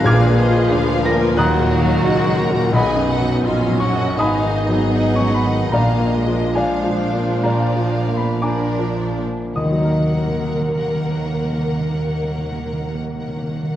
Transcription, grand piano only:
0.05 1.34 A#2 medium
0.05 1.02 D6 medium
0.05 1.01 F6 medium
0.05 1.01 G#6 medium
0.27 0.62 A#3 medium
0.50 0.85 F3 medium
0.71 1.07 D4 medium
0.94 1.30 F3 medium
1.05 1.36 A#6 medium
1.16 1.38 A#3 medium
1.37 2.03 D#2 medium
1.37 2.70 A#5 medium
1.37 2.70 D#6 medium
1.37 2.69 F#6 medium
1.59 1.95 A#2 medium
1.82 2.18 F#3 medium
2.04 2.41 D#4 medium
2.27 2.64 F#3 medium
2.50 2.73 A#2 medium
2.72 3.41 B1 medium
2.72 3.77 D#5 medium
2.72 3.77 F#5 medium
2.72 3.76 B5 medium
2.96 3.34 F#2 medium
3.20 3.58 F#3 medium
3.44 3.82 D#4 medium
3.67 4.07 F#3 medium
3.80 4.15 C#6 medium
3.92 4.17 F#2 medium
4.17 5.68 G#2 medium
4.17 5.11 G#5 medium
4.17 5.11 B5 medium
4.17 5.11 D#6 medium
4.43 4.84 D#3 soft
4.68 5.10 F#3 medium
4.95 5.36 D#4 medium
5.16 5.33 C#6 medium
5.20 5.62 F#3 soft
5.34 5.70 B5 medium
5.46 5.72 D#3 soft
5.72 7.40 A#2 medium
5.72 6.52 D5 medium
5.72 6.52 F5 soft
5.72 6.51 A#5 medium
6.00 6.44 A#3 soft
6.27 6.72 F3 soft
6.55 7.02 D4 soft
6.55 7.40 D5 soft
6.55 7.41 F5 soft
6.55 7.40 G#5 medium
6.84 7.31 F3 soft
7.14 7.63 A#3 soft
7.44 9.52 A#2 soft
7.44 8.13 D5 soft
7.44 8.13 F5 soft
7.44 8.12 A#5 medium
7.76 8.29 F3 soft
8.08 8.65 A#3 soft
8.17 8.41 B5 soft
8.42 9.03 D4 soft
8.42 9.52 G#5 soft
8.42 9.52 A#5 soft
8.42 9.52 D6 medium
8.79 9.41 F3 soft
9.19 9.56 A#3 soft
9.56 13.76 D#2 soft
9.56 9.90 D#5 soft
9.56 13.76 D#6 medium
9.63 13.76 D#3 soft
9.70 13.76 F#3 soft
9.78 13.76 D#4 soft
9.84 13.76 A#4 soft
9.91 13.76 D#5 soft

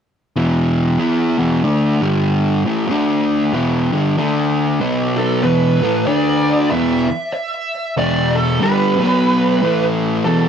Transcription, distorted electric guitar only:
0.36 0.99 E2 medium
0.36 0.99 B2 medium
0.36 0.98 E3 loud
0.99 1.36 E3 medium
0.99 1.37 B3 medium
0.99 1.37 E4 medium
1.38 1.63 E2 loud
1.38 1.63 B2 loud
1.38 1.63 E3 loud
1.64 2.00 D3 medium
1.64 2.01 A3 medium
1.64 2.01 D4 loud
2.02 2.64 G2 loud
2.02 2.64 D3 medium
2.02 2.64 G3 loud
2.65 2.91 A2 medium
2.65 2.91 E3 loud
2.65 2.91 A3 medium
2.91 3.53 D3 loud
2.91 3.53 A3 medium
2.91 3.54 D4 loud
3.53 3.90 E2 medium
3.53 3.90 B2 medium
3.53 3.91 E3 loud
3.92 4.16 G2 medium
3.92 4.16 D3 loud
3.92 4.17 G3 loud
4.17 4.80 D3 medium
4.17 4.80 A3 loud
4.17 4.80 D4 loud
4.81 5.43 B2 medium
4.81 5.43 F#3 medium
4.81 5.43 B3 medium
5.43 5.80 E2 loud
5.43 5.81 B2 loud
5.43 5.81 E3 loud
5.82 6.06 A2 loud
5.82 6.07 E3 loud
5.82 6.06 A3 loud
6.07 6.70 D3 medium
6.07 6.70 A3 medium
6.07 6.70 D4 loud
6.70 7.07 E2 loud
6.70 7.07 B2 medium
6.70 7.07 E3 loud
7.97 8.59 E2 loud
7.97 8.59 B2 loud
7.97 8.60 E3 loud
8.61 8.97 G2 medium
8.61 8.99 D3 loud
8.61 8.99 G3 loud
8.99 9.60 B2 medium
8.99 9.60 F#3 loud
8.99 9.60 B3 loud
9.62 10.23 A2 medium
9.62 10.24 E3 medium
9.62 10.24 A3 loud
10.25 10.49 E2 medium
10.25 10.49 B2 medium
10.25 10.49 E3 loud

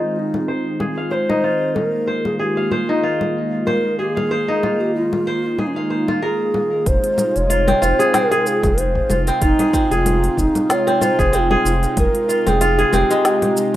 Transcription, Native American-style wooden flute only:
0.00 0.16 F4 medium
0.16 0.80 D#4 medium
0.16 0.20 F4 medium
1.11 1.77 C5 loud
1.11 1.15 C#5 medium
1.75 2.27 A#4 loud
2.25 2.38 G#4 medium
2.39 2.44 G#4 medium
2.43 2.73 G4 medium
2.71 3.35 F4 medium
3.67 3.97 A#4 medium
3.99 4.15 G4 medium
4.15 4.82 G#4 medium
4.81 4.94 G4 medium
4.95 5.61 F4 medium
5.59 5.68 D#4 medium
5.67 5.75 C#4 medium
5.74 6.23 D#4 medium
6.23 6.89 G#4 medium
6.88 7.38 C5 medium
7.37 7.85 C#5 loud
7.83 8.17 C5 medium
8.15 8.48 A#4 medium
8.47 8.81 G#4 medium
8.79 9.18 C5 medium
9.43 9.95 D#4 loud
9.93 10.40 F4 loud
10.39 10.73 D#4 loud
10.71 11.05 C#5 medium
11.03 11.37 C5 loud
11.36 11.72 F4 medium
11.36 11.40 G4 medium
11.99 12.51 A#4 loud
12.49 12.96 G#4 loud
12.95 13.76 G4 loud

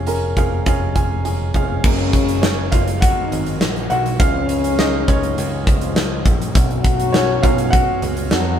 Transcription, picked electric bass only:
0.00 0.33 F1 medium
0.37 0.64 F1 medium
0.66 1.51 F1 medium
1.54 1.82 F1 medium
1.84 2.68 F#1 medium
2.72 3.13 F#1 medium
3.32 3.59 G#1 medium
3.62 3.89 A#1 medium
3.90 4.18 B1 medium
4.20 5.04 C#2 loud
5.08 5.35 C#2 medium
5.38 6.22 C#2 loud
6.25 6.53 A#1 medium
6.55 7.39 B1 loud
7.43 7.84 B1 loud
8.02 8.29 C#2 medium
8.32 8.59 F2 medium

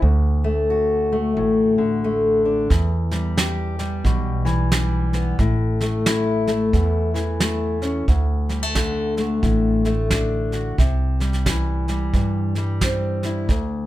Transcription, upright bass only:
0.02 1.33 D2 medium
1.37 2.67 A1 medium
2.70 4.00 E2 medium
4.04 5.35 B1 medium
5.39 6.69 A1 medium
6.73 8.04 E2 medium
8.08 9.39 D2 medium
9.43 10.74 A1 medium
10.78 12.09 C2 medium
12.14 13.45 G2 medium
13.49 13.86 D2 medium

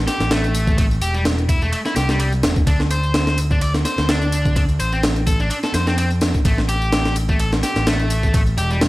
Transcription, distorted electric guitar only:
0.07 0.30 G4 medium
0.31 0.77 A3 medium
0.78 0.84 A3 loud
1.02 1.14 G4 medium
1.15 1.23 G3 loud
1.49 1.61 E4 loud
1.62 1.72 A3 loud
1.73 1.79 A3 loud
1.86 1.94 E4 medium
1.96 2.08 G4 medium
2.09 2.18 G3 loud
2.20 2.30 G3 medium
2.67 2.79 D4 loud
2.91 3.37 C5 medium
3.51 3.59 D4 medium
3.62 3.72 D5 medium
3.85 4.08 C5 medium
4.09 4.55 D4 medium
4.56 4.62 D4 loud
4.80 4.91 C5 medium
4.93 5.01 C4 medium
5.27 5.39 A4 loud
5.40 5.50 D4 loud
5.51 5.57 D4 loud
5.64 5.72 A4 medium
5.75 5.86 C5 medium
5.87 5.96 C4 loud
5.98 6.08 C4 medium
6.46 6.58 A3 loud
6.69 7.15 G4 medium
7.29 7.38 A3 medium
7.40 7.50 A4 medium
7.63 7.86 G4 medium
7.87 8.33 A3 medium
8.34 8.40 A3 loud
8.58 8.69 G4 medium
8.71 8.79 G3 loud

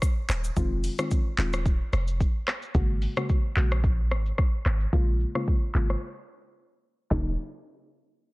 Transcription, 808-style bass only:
0.29 0.50 D#1 medium
0.57 0.89 F1 loud
1.38 1.80 D#1 medium
1.93 2.25 F1 medium
2.75 3.07 G#1 loud
3.57 4.13 A#1 medium
4.11 4.32 G#1 medium
4.66 4.86 G#1 loud
4.93 5.25 A#1 loud
5.75 5.95 G#1 medium
7.11 7.36 D#1 loud

